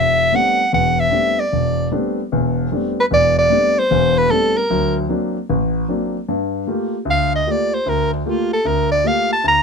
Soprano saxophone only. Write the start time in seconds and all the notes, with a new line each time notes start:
Already playing: E5
0.36 F#5
0.74 F#5
1.00 E5
1.40 D5
3.00 B4
3.13 D5
3.38 D5
3.79 C5
4.18 B4
4.31 A4
4.57 A#4
7.10 F5
7.35 D#5
7.51 D5
7.74 C5
7.89 A#4
8.13 D4
8.29 F4
8.53 A4
8.67 A#4
8.91 D5
9.07 F5
9.32 A5
9.48 A#5